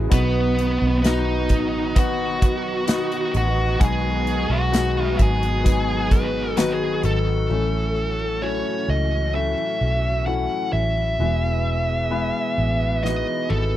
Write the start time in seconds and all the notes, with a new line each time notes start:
Already playing: C#3 G#3 B3 C#4 E4 F#4 G#4 C#5
0.10 B1 B2 D#3 F#3 B3 D#4 F#4 B4, kick, closed hi-hat
0.14 B3
0.58 D#4, closed hi-hat
0.82 B1
1.03 B3 D#4 F#4 D#5, snare, closed hi-hat
1.07 D#4
1.49 A1 D#4, kick, closed hi-hat
1.96 F#3 B3 D#4 F#4 F#5, kick, closed hi-hat
2.42 B4, kick, closed hi-hat
2.88 B3 D#4 F#4, snare, closed hi-hat
3.12 closed hi-hat
3.34 A1 F#4 B4 F#5, closed hi-hat
3.79 B1 B2 F#3 G#3 B3 D#4 G#4, kick, closed hi-hat
3.84 G#4 G#5
4.27 F#4, closed hi-hat
4.50 B1 F#4 F#5
4.72 F#3 G#3 B3 D#4 F#4, snare, closed hi-hat
5.04 E5
5.19 G#1 F#4 G#4 G#5, kick, closed hi-hat
5.43 closed hi-hat
5.64 F#3 G#3 B3 D#4 G#4, kick, closed hi-hat
6.11 G#4 B4, kick, closed hi-hat
6.57 D#3 F#3 B3 D#4 F#4 B4, snare, closed hi-hat
7.03 G#1 A4, closed hi-hat
7.49 A1 A2 E3 F#3 A3 C#4 E4 F#4 A4 C#5
7.73 E4
7.96 F#4
8.19 C#5
8.42 F#3 C#4 E4 A4 C#5
8.65 F#4
8.87 C#2 C#5 D#5
9.11 E4
9.33 F#3 A3 C#4 E4 A4 C#5 E5
9.57 E4
9.81 B1 F#4
10.04 C#5
10.26 F#3 C#4 E4 A4 F#5
10.50 F#4
10.73 A1 C#5 E5
10.97 E4
11.19 E1 B2 E3 G#3 B3 E4 G#4 B4
11.44 B3
11.89 G#4
12.11 G#3 B3 E4 B4
12.58 A1 G#4
12.80 B3
13.03 E3 B3 D#4 E4 F#4 G#4 D#5, snare
13.26 B3
13.50 G#1 D#4 A4, high tom